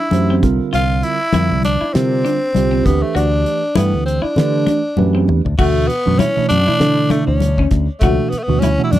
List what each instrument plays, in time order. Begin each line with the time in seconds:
Already playing: tenor saxophone E4
0.11 fretless electric bass F#2, tine electric piano E3 A3 D4 G4 C5, closed hi-hat, high conga
0.30 clean electric guitar C4
0.42 fretless electric bass C2, tine electric piano D3 G3 C4 F4 A#4, kick, snare, closed hi-hat, muted conga
0.73 fretless electric bass C2, clean electric guitar F4, tenor saxophone F4, closed hi-hat, muted conga
1.03 tenor saxophone E4, closed hi-hat, muted conga
1.33 fretless electric bass F2, tine electric piano D3 F3 G3 C4 A#4, clean electric guitar E4, closed hi-hat, high conga
1.51 fretless electric bass C2
1.63 tenor saxophone D4, closed hi-hat, high conga
1.81 clean electric guitar E4, muted fretless electric bass stroke
1.93 fretless electric bass C3, tine electric piano D3 G3 C4 F4 A#4, tenor saxophone C4, snare, closed hi-hat, muted conga
2.25 clean electric guitar D4, closed hi-hat
2.55 fretless electric bass C2, tine electric piano D3 G3 C4 F4 G4, closed hi-hat, high conga
2.71 clean electric guitar C4
2.85 fretless electric bass D2, tine electric piano E3 A3 D4 G4 B4, tenor saxophone B3, kick, snare, closed hi-hat, muted conga
3.03 tenor saxophone A3
3.15 fretless electric bass D2, tenor saxophone D4, clean electric guitar F#4, closed hi-hat, muted conga
3.45 closed hi-hat, muted conga
3.75 fretless electric bass G2, tine electric piano E3 A3 D4 G4 A4, tenor saxophone B3, clean electric guitar E4, closed hi-hat, high conga
3.93 fretless electric bass D2
4.06 tenor saxophone C4, closed hi-hat
4.22 tenor saxophone D4, clean electric guitar E4, muted fretless electric bass stroke
4.36 fretless electric bass D3, tine electric piano E3 A3 D4 G4 B4, snare, closed hi-hat, muted conga, low conga
4.66 clean electric guitar D4, closed hi-hat, high conga
4.97 fretless electric bass F#2, tine electric piano E3 A3 D4 G4 B4, high tom, high conga
5.15 clean electric guitar C4
5.27 fretless electric bass E2, mid tom, muted conga
5.45 fretless electric bass D2, floor tom
5.58 fretless electric bass D2, tine electric piano B2 E3 A3 D4 F#4, tenor saxophone A3, clean electric guitar F#4, kick, crash, muted conga
5.88 tenor saxophone B3, closed hi-hat
6.05 fretless electric bass F#2, tine electric piano B2 E3 A3 D4 F#4
6.19 tenor saxophone C#4, clean electric guitar E4, closed hi-hat, high conga
6.36 tine electric piano B2 E3 A3 D4 E4, muted fretless electric bass stroke
6.49 fretless electric bass F#2, tenor saxophone D4, closed hi-hat, muted conga
6.66 tine electric piano B2 E3 A3 D4 E4, clean electric guitar E4, muted fretless electric bass stroke
6.80 fretless electric bass D3, snare, closed hi-hat, muted conga
7.10 tenor saxophone A3, clean electric guitar D4, closed hi-hat, muted conga, high conga
7.26 fretless electric bass D2, tenor saxophone C#4
7.40 closed hi-hat, high conga
7.58 clean electric guitar C#4, kick
7.71 fretless electric bass D2, kick, snare, closed hi-hat
8.00 fretless electric bass C#2, tine electric piano B2 E3 A3 D4 F#4, tenor saxophone A3, clean electric guitar F#4, kick, closed hi-hat, muted conga
8.30 tenor saxophone B3, muted fretless electric bass stroke, closed hi-hat
8.39 tenor saxophone A3
8.43 tenor saxophone B3
8.48 fretless electric bass D2, tine electric piano B2 E3 A3 D4 F#4
8.60 tenor saxophone C#4, clean electric guitar E4, closed hi-hat, high conga
8.78 tine electric piano B2 E3 A3 D4 F#4
8.84 tenor saxophone E4
8.91 fretless electric bass F#2, tenor saxophone D4, closed hi-hat, muted conga, high conga, low conga